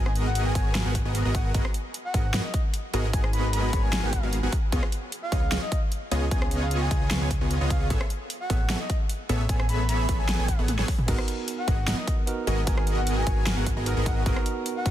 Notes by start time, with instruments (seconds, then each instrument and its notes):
Already playing: analog synth bass G#1, supersaw synth B3 F#4 G#4 A#4 D#5
0.06 soft synth lead G#5, cross-stick
0.15 closed hi-hat
0.26 soft synth lead F#5
0.35 closed hi-hat
0.46 soft synth lead G#5
0.55 analog synth bass G#1, supersaw synth B3 F#4 G#4 A#4 C#5, kick, closed hi-hat
0.75 analog synth bass G#1, supersaw synth B3 F#4 G#4 A#4 F5, snare, closed hi-hat
0.85 analog synth bass G#1, supersaw synth B3 F#4 G#4 A#4 F#5
0.95 kick, closed hi-hat
1.05 analog synth bass G#1, supersaw synth B3 F#4 G#4 A#4 D#5
1.15 closed hi-hat
1.25 analog synth bass G#1, supersaw synth B3 F#4 G#4 A#4 D#5
1.35 soft synth lead F#5, kick, closed hi-hat
1.45 soft synth lead F#5
1.54 analog synth bass G#1, supersaw synth B3 F#4 G#4 A#4 D#5, kick, closed hi-hat
1.65 cross-stick
1.74 closed hi-hat
1.94 closed hi-hat
2.05 soft synth lead F#5
2.14 analog synth bass G#1, supersaw synth B3 F#4 G#4 A#4 D#5, kick, closed hi-hat
2.34 analog synth bass G#1, supersaw synth B3 F#4 G#4 A#4 D#5, snare, closed hi-hat
2.45 soft synth lead D#5
2.54 kick, closed hi-hat
2.74 closed hi-hat
2.94 analog synth bass G#1, supersaw synth B3 F#4 G#4 A#4 D#5, closed hi-hat
3.13 analog synth bass G#1, supersaw synth B3 F#4 G#4 A#4 D#5, soft synth lead G#5, kick, closed hi-hat
3.24 soft synth lead G#5, cross-stick
3.33 soft synth lead B5, closed hi-hat
3.53 soft synth lead B5, closed hi-hat
3.73 analog synth bass G#1, supersaw synth B3 F#4 G#4 A#4 C#5, kick, closed hi-hat
3.84 soft synth lead G#5
3.93 analog synth bass G#1, supersaw synth B3 F#4 G#4 A#4 F5, snare, closed hi-hat
4.03 analog synth bass G#1, supersaw synth B3 F#4 G#4 A#4 F#5
4.13 kick, closed hi-hat
4.23 analog synth bass G#1, supersaw synth B3 F#4 G#4 A#4 F5
4.33 closed hi-hat
4.43 analog synth bass G#1, supersaw synth B3 F#4 G#4 A#4 F#5
4.52 kick, closed hi-hat
4.72 analog synth bass C#2, supersaw synth B3 F4 G#4 C#5 D#5, kick, closed hi-hat
4.83 cross-stick
4.92 closed hi-hat
5.12 closed hi-hat
5.23 soft synth lead F5
5.32 analog synth bass C#2, supersaw synth B3 F4 G#4 C#5 D#5, kick, closed hi-hat
5.52 analog synth bass C#2, supersaw synth B3 F4 G#4 C#5 D#5, snare, closed hi-hat
5.62 soft synth lead D#5
5.72 kick, closed hi-hat
5.92 closed hi-hat
6.11 analog synth bass C#2, supersaw synth B3 F4 G#4 C#5 D#5, closed hi-hat
6.31 analog synth bass C#2, supersaw synth B3 F4 G#4 C#5 D#5, soft synth lead G#5, kick, closed hi-hat
6.42 soft synth lead G#5, cross-stick
6.51 closed hi-hat
6.62 soft synth lead F5
6.71 closed hi-hat
6.82 soft synth lead G#5
6.91 analog synth bass C#2, supersaw synth B3 F4 G#4 C#5 D#5, kick, closed hi-hat
7.11 analog synth bass C#2, supersaw synth B3 F4 G#4 C#5 F5, snare, closed hi-hat
7.21 analog synth bass C#2, supersaw synth B3 F4 G#4 C#5 G#5
7.31 kick, closed hi-hat
7.41 analog synth bass C#2, supersaw synth B3 F4 G#4 C#5 D#5
7.51 closed hi-hat
7.61 analog synth bass C#2, supersaw synth B3 F4 G#4 C#5 D#5
7.70 soft synth lead F5, kick, closed hi-hat
7.81 soft synth lead F5
7.90 analog synth bass A1, supersaw synth B3 G#4 A4 C#5 E5, kick, closed hi-hat
8.01 cross-stick
8.10 closed hi-hat
8.30 closed hi-hat
8.40 soft synth lead F#5
8.50 analog synth bass A1, supersaw synth B3 G#4 A4 C#5 E5, kick, closed hi-hat
8.70 analog synth bass A1, supersaw synth B3 G#4 A4 C#5 E5, snare, closed hi-hat
8.80 soft synth lead D#5
8.90 kick, closed hi-hat
9.09 closed hi-hat
9.29 analog synth bass A1, supersaw synth B3 G#4 A4 C#5 E5, closed hi-hat
9.49 analog synth bass A1, supersaw synth B3 G#4 A4 C#5 E5, soft synth lead G#5, kick, closed hi-hat
9.60 soft synth lead G#5, cross-stick
9.69 soft synth lead B5, closed hi-hat
9.89 soft synth lead B5, closed hi-hat
10.09 analog synth bass A1, supersaw synth B3 G#4 A4 C#5 E5, kick, closed hi-hat
10.19 soft synth lead G#5
10.28 analog synth bass A1, supersaw synth B3 G#4 A4 C#5 F#5, snare, closed hi-hat
10.39 analog synth bass A1, supersaw synth B3 G#4 A4 C#5 G#5
10.48 kick, closed hi-hat
10.59 analog synth bass A1, supersaw synth B3 G#4 A4 C#5 F#5
10.68 closed hi-hat, high tom
10.79 analog synth bass A1, supersaw synth B3 G#4 A4 C#5 G#5, snare
10.88 kick, open hi-hat
10.99 mid tom
11.06 analog synth bass G#1, tine electric piano B3 D#4 F#4, supersaw synth B3 F#4 G#4 A#4 D#5, kick, closed hi-hat, crash
11.10 tine electric piano A#4
11.18 cross-stick
11.28 closed hi-hat
11.48 closed hi-hat
11.58 soft synth lead F#5
11.68 analog synth bass G#1, supersaw synth B3 F#4 G#4 A#4 D#5, kick, closed hi-hat
11.88 analog synth bass G#1, supersaw synth B3 F#4 G#4 A#4 D#5, snare, closed hi-hat
11.98 soft synth lead D#5
12.08 kick, closed hi-hat
12.26 tine electric piano B3 D#4 F#4 A#4, closed hi-hat
12.47 analog synth bass G#1, supersaw synth B3 F#4 G#4 A#4 D#5, closed hi-hat
12.65 analog synth bass G#1, tine electric piano B3 D#4 F#4 A#4, supersaw synth B3 F#4 G#4 A#4 D#5, soft synth lead G#5, kick, closed hi-hat
12.77 soft synth lead G#5, cross-stick
12.87 closed hi-hat
12.97 soft synth lead F#5
13.07 closed hi-hat
13.17 soft synth lead G#5
13.27 analog synth bass G#1, supersaw synth B3 F#4 G#4 A#4 C#5, kick, closed hi-hat
13.46 analog synth bass G#1, supersaw synth B3 F#4 G#4 A#4 F5, snare, closed hi-hat
13.57 analog synth bass G#1, supersaw synth B3 F#4 G#4 A#4 F#5
13.66 kick, closed hi-hat
13.77 analog synth bass G#1, supersaw synth B3 F#4 G#4 A#4 D#5
13.85 tine electric piano B3 D#4 F#4 A#4, closed hi-hat
13.97 analog synth bass G#1, supersaw synth B3 F#4 G#4 A#4 D#5
14.06 soft synth lead F#5, kick, closed hi-hat
14.17 soft synth lead F#5
14.24 analog synth bass G#1, tine electric piano B3 D#4 F#4 A#4, supersaw synth B3 F#4 G#4 A#4 D#5, kick, closed hi-hat
14.36 cross-stick
14.46 closed hi-hat
14.66 closed hi-hat
14.76 soft synth lead F#5
14.85 analog synth bass G#1, supersaw synth B3 F#4 G#4 A#4 D#5, kick, closed hi-hat